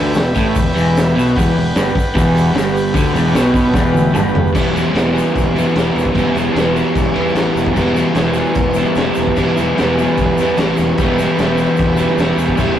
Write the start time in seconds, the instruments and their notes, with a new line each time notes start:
Already playing: fingered electric bass D2, overdriven electric guitar D3, transistor combo organ G4 B4 E5
0.14 fingered electric bass E1, overdriven electric guitar E2, snare, open hi-hat, shaker
0.23 shaker
0.35 fingered electric bass A1, overdriven electric guitar A2, kick, snare, open hi-hat, shaker
0.55 fingered electric bass E1, overdriven electric guitar E2, kick, open hi-hat, shaker
0.75 fingered electric bass E1, overdriven electric guitar E2, open hi-hat, shaker
0.96 snare, open hi-hat, shaker
1.16 fingered electric bass B1, overdriven electric guitar B2, open hi-hat, shaker
1.28 shaker
1.36 fingered electric bass E1, overdriven electric guitar E2, transistor combo organ G4 B4 F#5, kick, open hi-hat, shaker
1.56 fingered electric bass E1, overdriven electric guitar E2, open hi-hat
1.75 fingered electric bass G1, overdriven electric guitar G2, snare, open hi-hat, shaker
1.88 shaker
1.95 muted fingered electric bass stroke, muted overdriven electric guitar stroke, kick, snare, open hi-hat, shaker
2.15 fingered electric bass E1, overdriven electric guitar E2, kick, open hi-hat, shaker
2.35 open hi-hat, shaker
2.48 shaker
2.54 fingered electric bass G1, overdriven electric guitar G2, snare, open hi-hat
2.58 shaker
2.74 open hi-hat, shaker
2.87 shaker
2.94 fingered electric bass D2, overdriven electric guitar D3, kick, open hi-hat, shaker
3.06 snare, shaker
3.13 fingered electric bass E1, overdriven electric guitar E2, open hi-hat, shaker
3.27 shaker
3.34 fingered electric bass B1, overdriven electric guitar B2, snare, open hi-hat, shaker
3.54 kick, open hi-hat, shaker
3.66 shaker
3.74 fingered electric bass E1, overdriven electric guitar E2, kick, snare, shaker
3.86 shaker
3.94 high tom, shaker
4.13 fingered electric bass G1, overdriven electric guitar G2, mid tom, shaker
4.28 shaker
4.35 floor tom
4.47 shaker
4.53 fingered electric bass E1, overdriven electric guitar E3 G3 B3, kick, crash, shaker
4.58 overdriven electric guitar E4
4.74 overdriven electric guitar B3 E4, crash, shaker
4.78 overdriven electric guitar G3
4.91 fingered electric bass E1, overdriven electric guitar E3 G3, crash
4.96 overdriven electric guitar B3 E4, snare, shaker
5.13 overdriven electric guitar B3 E4, crash
5.17 overdriven electric guitar G3, shaker
5.35 fingered electric bass E1, kick, crash, shaker
5.56 overdriven electric guitar B3 E4, crash, shaker
5.61 overdriven electric guitar G3
5.76 fingered electric bass E1, overdriven electric guitar E3 G3 B3, snare, crash, shaker
5.80 overdriven electric guitar E4
5.95 fingered electric bass E1, crash, shaker
6.05 kick
6.13 fingered electric bass E1, overdriven electric guitar E3 G3, kick, crash
6.17 overdriven electric guitar B3 E4, shaker
6.35 fingered electric bass E1, overdriven electric guitar B3 E4, crash, shaker
6.39 overdriven electric guitar G3
6.53 fingered electric bass E1, overdriven electric guitar E3 G3 B3, crash
6.57 overdriven electric guitar E4, snare, shaker
6.73 overdriven electric guitar B3 E4, crash, shaker
6.79 overdriven electric guitar G3
6.88 shaker
6.95 fingered electric bass E1, kick, crash, shaker
7.14 fingered electric bass E2, overdriven electric guitar B3 E4, crash
7.18 overdriven electric guitar G3
7.27 shaker
7.32 fingered electric bass A1, overdriven electric guitar E3 G3 B3, crash
7.36 overdriven electric guitar E4, snare, shaker
7.55 fingered electric bass E1, crash, shaker
7.66 kick
7.74 fingered electric bass E1, overdriven electric guitar E3 G3 B3, kick, crash, shaker
7.79 overdriven electric guitar E4
7.94 overdriven electric guitar B3 E4, crash, shaker
8.00 overdriven electric guitar G3
8.13 fingered electric bass E1, overdriven electric guitar E3 G3, snare, crash, shaker
8.18 overdriven electric guitar B3 E4
8.33 overdriven electric guitar B3 E4, crash, shaker
8.40 overdriven electric guitar G3
8.46 shaker
8.54 fingered electric bass E1, kick, crash, shaker
8.74 overdriven electric guitar E4, crash, shaker
8.79 overdriven electric guitar G3 B3
8.95 fingered electric bass E1, overdriven electric guitar E3 G3, snare, crash, shaker
9.00 overdriven electric guitar B3 E4
9.14 fingered electric bass E1, crash, shaker
9.27 kick
9.36 fingered electric bass E1, overdriven electric guitar E3 G3 B3, kick, crash, shaker
9.40 overdriven electric guitar E4
9.57 fingered electric bass E1, overdriven electric guitar B3 E4, crash, shaker
9.62 overdriven electric guitar G3
9.76 overdriven electric guitar E3 G3 B3, snare, crash, shaker
9.80 fingered electric bass E1, overdriven electric guitar E4
9.97 overdriven electric guitar B3 E4, crash, shaker
10.03 overdriven electric guitar G3
10.17 fingered electric bass E1, kick, crash, shaker
10.38 fingered electric bass E2, overdriven electric guitar E4, crash, shaker
10.42 overdriven electric guitar G3 B3
10.56 fingered electric bass A1, overdriven electric guitar E3 G3 B3, snare, crash, shaker
10.62 overdriven electric guitar E4
10.77 fingered electric bass E1, snare, shaker
10.90 shaker
10.98 fingered electric bass E1, overdriven electric guitar E3 G3, transistor combo organ G4 B4 E5, kick, crash, shaker
11.02 overdriven electric guitar B3 E4
11.18 overdriven electric guitar B3 E4, crash, shaker
11.23 overdriven electric guitar G3
11.38 fingered electric bass E1, overdriven electric guitar E3 G3 B3, snare, crash, shaker
11.43 overdriven electric guitar E4
11.57 overdriven electric guitar B3 E4, crash, shaker
11.62 overdriven electric guitar G3, shaker
11.76 fingered electric bass E1, kick, crash, shaker
11.96 overdriven electric guitar B3 E4, crash, shaker
12.01 overdriven electric guitar G3
12.17 fingered electric bass E1, overdriven electric guitar E3 G3, snare, crash, shaker
12.22 overdriven electric guitar B3 E4
12.37 fingered electric bass E1, crash, shaker
12.49 kick
12.57 fingered electric bass E1, overdriven electric guitar E3 G3 B3, kick, crash, shaker
12.62 overdriven electric guitar E4
12.76 fingered electric bass E1